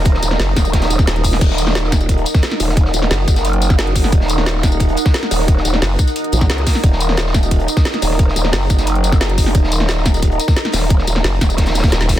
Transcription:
<<
  \new Staff \with { instrumentName = "Ambient pad" } { \time 4/4 \key ees \minor \tempo 4 = 177 << { bes''1 | ges''1~ | ges''1~ | ges''1~ |
ges''1 | bes''1~ | bes''1~ | bes''1~ |
bes''1 | } \\ { <ees' bes' ees''>1~ | <ees' bes' ees''>1~ | <ees' bes' ees''>1~ | <ees' bes' ees''>1~ |
<ees' bes' ees''>1~ | <ees' bes' ees''>1~ | <ees' bes' ees''>1~ | <ees' bes' ees''>1~ |
<ees' bes' ees''>1 | } >> }
  \new Staff \with { instrumentName = "Wobble bass" } { \clef bass \time 4/4 \key ees \minor r4 ges,,8 r4. ees,,4 | r1 | r4 ges,,8 r2 r8 | r1 |
r4 ges,,8 r4 bes,,8 r4 | r1 | r4 ges,,8 r2 r8 | r1 |
r4 ges,,8 r4. ees,,4 | }
  \new Staff \with { instrumentName = "Wobble bass" } { \clef bass \time 4/4 \key ees \minor ees,,8 ees,,8 r8 ees,,4. r4 | ees,,2~ ees,,8 r4 ees,,8~ | ees,,8 ees,,8 r8 ges,,2~ ges,,8 | ees,,2~ ees,,8 r4 ees,,8~ |
ees,,8 ees,,8 r2 des,8 r8 | ees,,2~ ees,,8 r4 ees,,8~ | ees,,8 ees,,8 r8 ges,,2~ ges,,8 | ees,,2~ ees,,8 r4 ees,,8~ |
ees,,8 ees,,8 r8 ees,,4. r4 | }
  \new DrumStaff \with { instrumentName = "Drums" } \drummode { \time 4/4 <hh bd>16 sn16 <hh tamb>16 sn16 <hh hho sn tamb>8 <hh bd sn tamb>16 <hh tamb>16 <hh bd sn>16 <hh sn>16 <hh tamb>16 <bd sn tamb>16 <hh sn>16 hh16 <hh hho bd tamb>16 sn16 | <cymc hh bd>16 sn16 <hh tamb>16 sn16 <hh sn tamb>16 sn16 <hh bd sn tamb>16 <hh tamb>16 <hh bd>16 hh16 <hh tamb>16 <bd sn tamb>16 <hh sn>16 <hh sn>16 <hh hho tamb>16 sn16 | <hh bd>16 sn16 <hh tamb>16 sn16 <hh hho sn tamb>8 <hh bd tamb>16 <hh sn tamb>16 hh16 hh16 <hh tamb>16 <bd sn tamb>16 <hh sn>16 hh16 <hh hho bd tamb>16 sn16 | <hh bd>16 sn16 <hh tamb>16 sn16 <hh sn tamb>16 sn16 <hh bd sn tamb>16 <hh tamb>16 <hh bd>16 hh16 <hh tamb>16 <bd sn tamb>16 <hh sn>16 <hh sn>16 <hh hho tamb>16 sn16 |
<hh bd>16 sn16 <hh tamb>16 sn16 <hh hho sn tamb>8 <hh bd tamb>16 <hh tamb>16 hh16 hh16 <hh tamb>16 <bd sn tamb>16 <hh sn>16 hh16 <hh hho bd sn tamb>16 sn16 | <hh bd>16 sn16 <hh tamb>16 sn16 <hh sn tamb>16 sn16 <hh bd sn tamb>16 <hh tamb>16 <hh bd>16 hh16 <hh tamb>16 <bd sn tamb>16 <hh sn>16 <hh sn>16 <hh hho tamb>16 sn16 | <hh bd>16 sn16 <hh tamb>16 sn16 <hh hho sn tamb>8 <hh bd tamb>16 <hh sn tamb>16 hh16 hh16 <hh tamb>16 <bd sn tamb>16 <hh sn>16 hh16 <hh hho bd tamb>16 sn16 | <hh bd>16 sn16 <hh tamb>16 sn16 <hh sn tamb>16 sn16 <hh bd sn tamb>16 <hh tamb>16 <hh bd>16 hh16 <hh tamb>16 <bd sn tamb>16 <hh sn>16 <hh sn>16 <hh hho sn tamb>16 sn16 |
<hh bd>16 sn16 <hh tamb>16 sn16 <hh hho sn tamb>8 <hh bd sn tamb>16 <hh tamb>16 <hh bd sn>16 <hh sn>16 <hh sn tamb>32 <hh sn>32 <hh bd sn tamb>32 <hh sn>32 <hh sn>16 <hh sn>16 <hh hho bd sn tamb>8 | }
>>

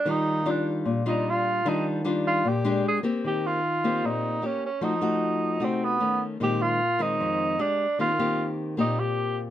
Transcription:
<<
  \new Staff \with { instrumentName = "Tenor saxophone" } { \time 4/4 \key ees \major \tempo 4 = 151 ees'4 d'8 r4 ees'8 f'4 | ees'8 r4 f'8 g'4 aes'8 r8 | g'8 f'4. ees'4 des'8 des'8 | ees'2 c'8 ces'4 r8 |
g'8 f'4 ees'4. d'4 | f'4. r8 ees'8 g'4 r8 | }
  \new Staff \with { instrumentName = "Nylon-string guitar" } { \time 4/4 \key ees \major << { <g f'>4 <g d' f'>4. <g d' f'>4. | <g d' f'>4 <g d' f'>4 r8 <aes d' g'>4 <bes c' g'>8~ | <bes c' g'>4 r8 <bes c' g'>4. <bes des' g'>8 r8 | <a ees' ges'>8 <a ees' ges'>4. <a ees' ges'>4 <dis a cis'>4 |
<ees aes c'>4 r8 <ees aes c'>4. <aes d' g'>8 r8 | <bes c' g'>8 <bes c' g'>4. <bes c' g'>2 | } \\ { ees2 bes,2 | ees2 bes,4 r4 | ees2 bes,4 r4 | f2 c4 r4 |
bes,2 f,4 r4 | ees2 bes,2 | } >> }
>>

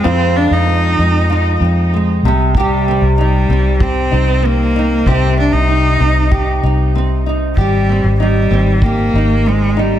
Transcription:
<<
  \new Staff \with { instrumentName = "Nylon-string guitar" } { \time 4/4 \key c \minor \tempo 4 = 96 <f, aes c' f'>8 aes8 c'8 aes8 f'8 c'8 aes8 c8 | <c g'>8 c'8 ees'8 c'8 g'8 ees'8 c'8 ees'8 | <c g'>8 c'8 ees'8 c'8 g'8 ees'8 c'8 ees'8 | g'8 c'8 ees'8 c'8 g'8 ees'8 c'8 ees'8 | }
  \new Staff \with { instrumentName = "Cello" } { \time 4/4 \key c \minor c'8 d'16 ees'4. r4. r16 | g4 g4 c'4 bes4 | c'8 d'16 ees'4. r4. r16 | g4 g4 bes4 aes8 g8 | }
  \new Staff \with { instrumentName = "Fingered electric bass" } { \clef bass \time 4/4 \key c \minor f,8. f,8. f,4 f,4 c,8~ | c,8. c,8. c,4 c,4. | c,8. c,8. c,4 c,4. | aes,,8. aes,,8. aes,,4 aes,,4. | }
  \new DrumStaff \with { instrumentName = "Drums" } \drummode { \time 4/4 r4 r4 r4 r4 | bd4 r4 bd4 r4 | bd4 r4 bd4 r4 | bd4 r4 bd4 r4 | }
>>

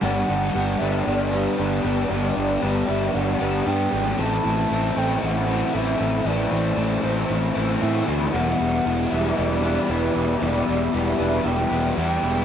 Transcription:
<<
  \new Staff \with { instrumentName = "Flute" } { \time 4/4 \key g \major \tempo 4 = 116 fis''4. e''8 d''4 b'4 | d''4 r8 e''8 fis''4 g''4 | a''4. g''8 fis''4 e''4 | d''4. c''2 r8 |
fis''4. e''8 d''4 b'4 | d''4 r8 e''8 g''4 g''4 | }
  \new Staff \with { instrumentName = "Ambient pad" } { \time 4/4 \key g \major r1 | r1 | r1 | r1 |
<g' d'' e'' b''>1~ | <g' d'' e'' b''>1 | }
  \new Staff \with { instrumentName = "Overdriven electric guitar" } { \time 4/4 \key g \major <g, d g b d' g'>8 <g b d' g'>8 <g b d' g'>8 <g b d' g'>4 <g b d' g'>8 <g b d' g'>4 | <g, d g b d' g'>8 <g b d' g'>8 <g b d' g'>8 <g b d' g'>4 <g b d' g'>8 <g b d' g'>4 | <a, e a c' e'>8 <a c' e'>8 <e a c' e'>8 <a c' e'>4 <a c' e'>8 <e a c' e'>4 | <a, e a c' e'>8 <a c' e'>8 <e a c' e'>8 <a c' e'>4 <a c' e'>8 <e a c' e'>4 |
<e, b, e g b e'>8 <e g b e'>8 <e g b e'>8 <e g b e'>4 <e g b e'>8 <e g b e'>4 | <e, b, e g b e'>8 <e g b e'>8 <e g b e'>8 <e g b e'>4 <e g b e'>8 <e g b e'>4 | }
  \new Staff \with { instrumentName = "Overdriven electric guitar" } { \time 4/4 \key g \major <g, d g b d'>8 <g b d'>8 <d g b d'>8 <g b d'>8 <g, d g b d'>8 <g b d'>8 <d g b d'>8 <g b d'>8 | <g, d g b d'>8 <g b d'>8 <d g b d'>8 <g b d'>8 <g, d g b d'>8 <g b d'>8 <d g b d'>8 <g b d'>8 | <a, e a c' e'>8 <a c' e'>8 <e a c' e'>8 <a c' e'>8 <a, e a c' e'>8 <a c' e'>8 <e a c' e'>8 <a c' e'>8 | <a, e a c' e'>8 <a c' e'>8 <e a c' e'>8 <a c' e'>8 <a, e a c' e'>8 <a c' e'>8 <e a c' e'>8 <a c' e'>8 |
<e g b e'>8 <g b e'>8 <e g b e'>8 <g b e'>8 <e g b e'>8 <g b e'>8 <e g b e'>8 <g b e'>8 | <e g b e'>8 <g b e'>8 <e g b e'>8 <g b e'>8 <e g b e'>8 <g b e'>8 <e g b e'>8 <g b e'>8 | }
  \new Staff \with { instrumentName = "Clean electric guitar" } { \time 4/4 \key g \major r4 b8 d'4 b4 b8~ | b4 b8 d'4 b4 b8 | e8 e8 a8 c'8 e8 a8 e8 a8 | e8 e8 a8 c'8 e8 a8 e8 a8 |
e8 e8 b8 d'8 e8 b8 e8 b8 | e8 e8 b8 d'8 e8 b8 e8 b8 | }
  \new Staff \with { instrumentName = "Fingered electric bass" } { \clef bass \time 4/4 \key g \major g,,8 g,,8 g,,8 g,,8 g,,4 g,,8 g,,8 | g,,8 g,,8 g,,8 g,,8 g,,8 g,,8 g,8 aes,,8 | a,,8 a,,8 a,,8 a,,8 a,,4 a,,8 a,,8 | a,,8 a,,8 a,,8 a,,8 a,,8 a,,8 a,8 d,8 |
e,,8 e,,8 e,,8 e,,8 e,,4 e,,8 e,,8 | e,,8 e,,8 e,,8 e,,8 e,,8 e,,8 e,8 e,,8 | }
>>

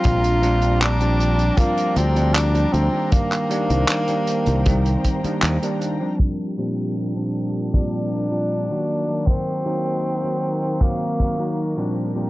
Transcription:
<<
  \new Staff \with { instrumentName = "String section" } { \time 4/4 \key c \dorian \tempo 4 = 78 << { bes''1~ | bes''1 | bes'1~ | bes'1 | } \\ { <f' d'' g''>1 | <ees c'' g''>1 | <f d' g'>2.~ <f d' g'>8 <ees bes ges'>8~ | <ees bes ges'>2.~ <ees bes ges'>8 <f d' g'>8 | } >> }
  \new Staff \with { instrumentName = "Tenor saxophone" } { \time 4/4 \key c \dorian f'4 d'4 bes8 c'8 d'8 c'8 | bes2. r4 | r2 d'2 | c'2 bes4. r8 | }
  \new Staff \with { instrumentName = "Tine electric piano" } { \clef bass \time 4/4 \key c \dorian <f g c' d'>8 <f g c' d'>8. <f g c' d'>8. <f g c' d'>8. <f g c' d'>8 <f g c' d'>8 <ees g bes d'>16~ | <ees g bes d'>8 <ees g bes d'>8. <ees g bes d'>8. <ees g bes c'>8. <ees g bes d'>8 <ees g bes d'>8 <f g c' d'>16~ | <f g c' d'>8 <bes, f g c' d'>8. <bes, f g c' d'>8. <bes, f g c' d'>8. <bes, f g c' d'>8 <ees ges bes ges'>8 <ees ges bes ees'>16~ | <ees ges bes ees'>8 <ees ges bes ees'>8. <ees ges bes ees'>8. <ees ges bes c'>8. <ees ges bes ees'>8 <bes, f g c' d'>8 <bes, f g c' d'>16 | }
  \new Staff \with { instrumentName = "Fingered electric bass" } { \clef bass \time 4/4 \key c \dorian bes,,2 r8 d,4 d,16 r16 | r8. c,16 r8. c,8. r8 ees,16 r8. | r1 | r1 | }
  \new DrumStaff \with { instrumentName = "Drums" } \drummode { \time 4/4 <hh bd>16 hh16 hh16 hh16 <hc hh>16 hh16 hh16 hh16 <hh bd>16 hh16 hh16 hh16 <hc hh>16 hh16 hh8 | <hh bd>16 <hc hh>16 hh16 hh16 <hc hh>16 hh16 hh16 hh16 <hh bd>16 hh16 <hh bd>16 hh16 <hc hh>16 hh16 hh8 | bd4 r4 bd4 r4 | bd4 r4 bd8 bd8 r4 | }
>>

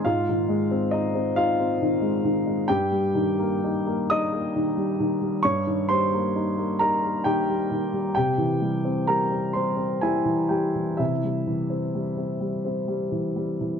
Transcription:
<<
  \new Staff \with { instrumentName = "Upright piano" } { \time 6/8 \key c \phrygian \tempo 4. = 44 <f' f''>4 <ees' ees''>8 <f' f''>4. | <g' g''>4. <ees'' ees'''>4. | <des'' des'''>8 <c'' c'''>4 <bes' bes''>8 <g' g''>4 | <g' g''>4 <bes' bes''>8 <c'' c'''>8 <e' aes''>8 <g' g''>8 |
<e' e''>4. r4. | }
  \new Staff \with { instrumentName = "Upright piano" } { \clef bass \time 6/8 \key c \phrygian <aes, aes>16 ees16 aes16 c'8 c'16 ees'16 c'16 ees16 aes16 ees16 aes16 | g,16 g16 ees16 bes16 ees'16 bes16 ees'16 bes16 ees16 g16 ees16 g16 | g,16 ees16 g16 bes16 ees'16 bes16 ees'16 bes16 ees16 g16 ees16 g16 | c16 e16 g16 c'16 g16 c'16 g16 c'16 g16 e16 g16 e16 |
c16 g16 e16 c'16 g16 c'16 g16 c'16 g16 e16 g16 e16 | }
>>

